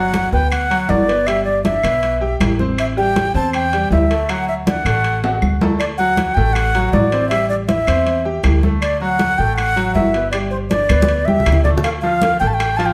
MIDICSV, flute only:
0, 0, Header, 1, 2, 480
1, 0, Start_track
1, 0, Tempo, 377596
1, 1617, Time_signature, 4, 2, 24, 8
1, 16438, End_track
2, 0, Start_track
2, 0, Title_t, "Flute"
2, 0, Program_c, 0, 73
2, 0, Note_on_c, 0, 78, 99
2, 414, Note_off_c, 0, 78, 0
2, 421, Note_on_c, 0, 79, 89
2, 642, Note_off_c, 0, 79, 0
2, 650, Note_on_c, 0, 78, 99
2, 1135, Note_on_c, 0, 74, 81
2, 1154, Note_off_c, 0, 78, 0
2, 1611, Note_on_c, 0, 76, 91
2, 1630, Note_off_c, 0, 74, 0
2, 1828, Note_off_c, 0, 76, 0
2, 1836, Note_on_c, 0, 74, 79
2, 2069, Note_off_c, 0, 74, 0
2, 2085, Note_on_c, 0, 76, 83
2, 3000, Note_off_c, 0, 76, 0
2, 3549, Note_on_c, 0, 76, 83
2, 3626, Note_off_c, 0, 76, 0
2, 3786, Note_on_c, 0, 79, 97
2, 4228, Note_off_c, 0, 79, 0
2, 4267, Note_on_c, 0, 81, 95
2, 4485, Note_off_c, 0, 81, 0
2, 4501, Note_on_c, 0, 79, 103
2, 4945, Note_off_c, 0, 79, 0
2, 4989, Note_on_c, 0, 76, 82
2, 5465, Note_on_c, 0, 78, 86
2, 5484, Note_off_c, 0, 76, 0
2, 5691, Note_off_c, 0, 78, 0
2, 5699, Note_on_c, 0, 76, 78
2, 5775, Note_off_c, 0, 76, 0
2, 5954, Note_on_c, 0, 78, 85
2, 6853, Note_off_c, 0, 78, 0
2, 7359, Note_on_c, 0, 74, 81
2, 7436, Note_off_c, 0, 74, 0
2, 7598, Note_on_c, 0, 78, 94
2, 8062, Note_on_c, 0, 79, 92
2, 8081, Note_off_c, 0, 78, 0
2, 8301, Note_on_c, 0, 78, 102
2, 8320, Note_off_c, 0, 79, 0
2, 8797, Note_off_c, 0, 78, 0
2, 8807, Note_on_c, 0, 74, 80
2, 9256, Note_off_c, 0, 74, 0
2, 9264, Note_on_c, 0, 76, 95
2, 9500, Note_off_c, 0, 76, 0
2, 9524, Note_on_c, 0, 74, 76
2, 9600, Note_off_c, 0, 74, 0
2, 9757, Note_on_c, 0, 76, 87
2, 10673, Note_off_c, 0, 76, 0
2, 11205, Note_on_c, 0, 74, 81
2, 11432, Note_off_c, 0, 74, 0
2, 11455, Note_on_c, 0, 78, 96
2, 11926, Note_on_c, 0, 79, 82
2, 11945, Note_off_c, 0, 78, 0
2, 12150, Note_off_c, 0, 79, 0
2, 12157, Note_on_c, 0, 78, 100
2, 12611, Note_off_c, 0, 78, 0
2, 12644, Note_on_c, 0, 76, 75
2, 13095, Note_off_c, 0, 76, 0
2, 13109, Note_on_c, 0, 74, 84
2, 13185, Note_off_c, 0, 74, 0
2, 13354, Note_on_c, 0, 72, 75
2, 13430, Note_off_c, 0, 72, 0
2, 13597, Note_on_c, 0, 74, 91
2, 14305, Note_on_c, 0, 76, 92
2, 14324, Note_off_c, 0, 74, 0
2, 14788, Note_off_c, 0, 76, 0
2, 14795, Note_on_c, 0, 74, 79
2, 14872, Note_off_c, 0, 74, 0
2, 15041, Note_on_c, 0, 77, 80
2, 15117, Note_off_c, 0, 77, 0
2, 15270, Note_on_c, 0, 77, 95
2, 15729, Note_off_c, 0, 77, 0
2, 15757, Note_on_c, 0, 79, 84
2, 15856, Note_on_c, 0, 81, 67
2, 15875, Note_off_c, 0, 79, 0
2, 15937, Note_on_c, 0, 79, 94
2, 15956, Note_off_c, 0, 81, 0
2, 16231, Note_on_c, 0, 81, 98
2, 16250, Note_off_c, 0, 79, 0
2, 16342, Note_on_c, 0, 79, 82
2, 16361, Note_off_c, 0, 81, 0
2, 16438, Note_off_c, 0, 79, 0
2, 16438, End_track
0, 0, End_of_file